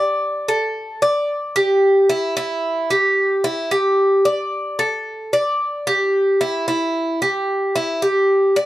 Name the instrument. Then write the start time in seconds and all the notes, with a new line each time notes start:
cuban tres
Already playing: D5
0.48 A4
1.02 D5
1.56 G4
2.09 E4
2.37 E4
2.90 G4
3.44 E4
3.71 G4
4.25 D5
4.79 A4
5.33 D5
5.87 G4
6.41 E4
6.68 E4
7.22 G4
7.75 E4
8.02 G4
8.56 D5